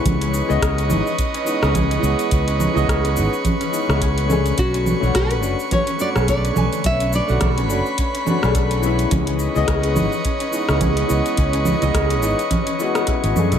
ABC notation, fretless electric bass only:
X:1
M:4/4
L:1/16
Q:"Swing 16ths" 1/4=106
K:Dbmix
V:1 name="Fretless electric bass" clef=bass
D,,2 z D,, D,,2 A,,, z4 D,,2 z D,, z | D,,2 z D,, z2 A,,, z4 D,,4 z | =B,,,2 z B,,, B,,,2 ^F,,, z4 B,,,2 z B,,, z | =B,,,2 z B,,, B,,,2 ^F,,, z4 B,,,4 z |
D,,2 z D,, D,,2 A,,, z4 D,,2 z D,, z | D,,2 z D,, D,,2 A,,, z6 A,,, G,, D,, |]